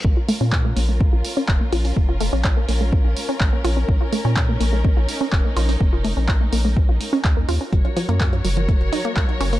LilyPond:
<<
  \new Staff \with { instrumentName = "String section" } { \time 4/4 \key bes \minor \tempo 4 = 125 << { <des' bes'>1~ | <des' bes'>1~ | <des' bes'>1~ | <des' bes'>1 |
<ges ges' des''>1 | } \\ { f'1~ | f'1 | ees'1~ | ees'1 |
bes'1 | } >> }
  \new Staff \with { instrumentName = "Synth arpeggio sound" } { \time 4/4 \key bes \minor bes16 f'16 a16 des'16 des''16 bes16 bes16 a16 c'16 f'16 r16 des'16 des''16 bes16 f'16 des'16 | bes16 f'16 a16 des'16 des''16 bes16 bes16 a16 c'16 f'16 r16 des'16 des''16 bes16 f'16 des'16 | bes16 f'16 a16 des'16 des''16 bes16 bes16 a16 c'16 f'16 r16 des'16 des''16 bes16 f'16 des'16 | bes16 f'16 a16 des'16 des''16 bes16 bes16 a16 c'16 f'16 r16 des'16 des''16 bes16 f'16 des'16 |
ges16 des'16 f16 bes16 bes'16 ges16 ges16 f16 a16 r16 ees'16 bes16 bes'16 ges16 des'16 bes16 | }
  \new Staff \with { instrumentName = "Analog synth bass" } { \clef bass \time 4/4 \key bes \minor bes,,16 r8 bes,8. bes,,8. bes,,16 r8 f,,16 r16 bes,,8 | f,,8. bes,,8. bes,,8. bes,,16 r8 bes,,16 r16 bes,,8 | bes,,16 r8 bes,8. bes,,8. bes,,16 r8 f,,16 r16 bes,,8 | f,,8. bes,,8. bes,,8. bes,,16 r8 ees,8 ees,16 r16 |
ges,,16 r8 ges,8. ges,,8. ges,,16 r8 des,16 r16 ges,,8 | }
  \new DrumStaff \with { instrumentName = "Drums" } \drummode { \time 4/4 bd8 hho8 <hc bd>8 hho8 bd8 hho8 <hc bd>8 hho16 hho16 | bd8 hho8 <hc bd>8 hho8 bd8 hho8 <hc bd>8 hho8 | bd8 hho8 <hc bd>8 hho8 bd8 hho8 <hc bd>8 hho16 hho16 | bd8 hho8 <hc bd>8 hho8 bd8 hho8 <hc bd>8 hho8 |
<hh bd>16 hh16 hho16 hh16 <hc hh bd>16 hh16 hho16 hh16 <hh bd>16 hh16 hho16 hh16 <hc hh bd>16 hh16 hho16 hho16 | }
>>